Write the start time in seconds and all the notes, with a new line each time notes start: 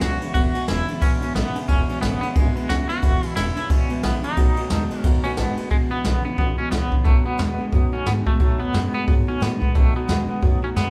0.00 C#2 E2 C#3 E3 G#3 B3 E4 F#4 B4 E5 G#5, snare, ride
0.20 E2 C#3 E3 G#3 B3 E4 B4 E5 B5, muted upright bass stroke, ride
0.34 E1 E2 B2 E3 G#3 B3 E4 F#4 B4 E5 F#5, kick, ride
0.54 E2 B2 E3 G#3 B3 E4 B4 G#5, ride
0.67 E1 E2 C#3 E3 G#3 B3 E4 B4 G#5, snare, ride
0.87 E2 C#3 E3 G#3 B3 E4 B4 E5 F#5, muted upright bass stroke, ride
1.01 E1 E2 B2 E3 G#3 B3 C#4 E4 B4 E5 G#5, kick, ride
1.21 G#1 E2 B2 E3 G#3 B3 E4 B4 E5 B5, ride
1.34 A1 E2 C#3 E3 G#3 B3 E4 B4 E5 F#5, snare, ride
1.54 E2 C#3 E3 G#3 B3 E4 B4 G#5, muted upright bass stroke, ride
1.67 E1 E2 B2 E3 G#3 B3 C#4 E4 B4 E5 G#5, kick, ride
1.87 E2 B2 E3 G#3 B3 E4 B4 E5 G#5, muted upright bass stroke, ride
2.01 G#1 E2 C#3 E3 G#3 B3 E4 B4 E5 G#5, snare, ride
2.21 E2 C#3 E3 G#3 B3 E4 B4, muted upright bass stroke, ride
2.35 G#1 E2 B2 E3 G#3 B3 E4 B4 E5 G#5, kick, ride
2.54 E2 B2 E3 G#3 B3 E4 B4 E5 B5, muted upright bass stroke, ride
2.67 C#2 E2 C#3 E3 G#3 B3 E4 F#4 B4 E5 G#5, snare, ride
2.88 E2 C#3 E3 G#3 B3 E4 F#4 B4 E5 B5, ride
3.02 E1 E2 B2 E3 G#3 B3 E4 B4 E5 F#5, kick, ride
3.22 E2 B2 E3 G#3 B3 E4 B4 G#5, muted upright bass stroke, ride
3.35 E1 E2 C#3 E3 G#3 B3 E4 B4 E5 G#5, snare, ride
3.55 E2 C#3 E3 G#3 B3 E4 B4 G#5, muted upright bass stroke, ride
3.69 E1 E2 B2 E3 G#3 B3 C#4 E4 B4 E5 B5, kick, ride
3.89 G#1 E2 B2 E3 G#3 B3 E4 B4 E5 G#5, ride
4.03 A#1 E2 C#3 E3 G#3 B3 B4 E5 G#5, snare, ride
4.23 E2 C#3 E3 G#3 B3 D#4 E4 B4 E5 B5, muted upright bass stroke, ride
4.37 B1 B2 D#3 F#3 A3 B3 F#4 B4 D#5 F#5, kick, ride
4.56 B2 F#3 A3 B3 F#4 B4 D#5 G#5, ride
4.69 D#2 B2 D#3 G#3 A3 B3 F#4 B4 D#5 A5, snare, ride
4.89 B2 G#3 A3 B3 F#4 B4 D#5 F#5, muted upright bass stroke, ride
4.99 C#4
5.03 D#2 B2 D#3 F#3 A3 B3 F#4 B4 D#5 F#5, kick, ride
5.23 B2 F#3 A3 B3 C#4 F#4 B4 D#5 F#5, muted upright bass stroke, ride
5.37 A1 B2 D#3 G#3 A3 B3 F#4 B4 D#5 A5, snare, ride
5.57 B2 G#3 A3 B3 F#4 B4 D#5 F#5, muted upright bass stroke, ride
5.70 E1 E2 B2 E3 G#3 B3 E4, kick, open hi-hat
5.90 A1 E2 B2 E3 G#3 B3 E4
6.04 B1 E2 B2 C#3 E3 G#3 B3 E4, snare, open hi-hat
6.24 E2 C#3 E3 G#3 B3 E4, muted upright bass stroke
6.37 C#2 E2 B2 E3 G#3 B3 E4, kick, open hi-hat
6.57 E2 B2 E3 G#3 B3 C#4 E4, muted upright bass stroke
6.71 C#2 E2 B2 C#3 E3 G#3 B3 E4, snare, open hi-hat
6.91 E2 C#3 E3 G#3 B3 E4, muted upright bass stroke, kick
7.04 B1 B2 D#3 F#3 A3 B3 F#4, kick, open hi-hat
7.24 B2 F#3 A3 B3 F#4
7.38 D#2 B2 D#3 G#3 A3 B3 F#4, snare, open hi-hat
7.58 B2 G#3 A3 B3 F#4, muted upright bass stroke
7.72 F#2 B2 D#3 F#3 A3 B3 F#4, kick, open hi-hat
7.92 B2 F#3 A3 B3 C#4 F#4, muted upright bass stroke
8.06 G#2 B2 D#3 G#3 A3 B3 F#4, snare, open hi-hat
8.26 B2 G#3 A3 B3 F#4, kick
8.39 B1 B2 D#3 F#3 A3 B3 F#4, kick, open hi-hat
8.59 E2 B2 F#3 A3 B3 F#4
8.73 F#2 B2 D#3 G#3 A3 B3 F#4, snare, open hi-hat
8.93 B2 G#3 A3 B3 F#4, muted upright bass stroke
9.07 G#2 B2 D#3 F#3 A3 B3 F#4, kick, open hi-hat
9.27 B2 F#3 A3 B3 C#4 F#4
9.40 A2 B2 D#3 G#3 A3 B3 F#4, snare, open hi-hat
9.61 B2 G#3 A3 B3 F#4, kick
9.75 B1 B2 D#3 F#3 A3 B3 F#4, kick, open hi-hat
9.94 B2 F#3 A3 B3 F#4, muted upright bass stroke
10.08 D#2 B2 D#3 G#3 A3 B3 F#4, snare, open hi-hat
10.28 B2 G#3 A3 B3 F#4, muted upright bass stroke
10.42 F#2 B2 D#3 F#3 A3 B3 F#4, kick, open hi-hat
10.62 B2 F#3 A3 B3 C#4 F#4, muted upright bass stroke
10.76 F#2 B2 D#3 G#3 A3 B3 F#4, snare, open hi-hat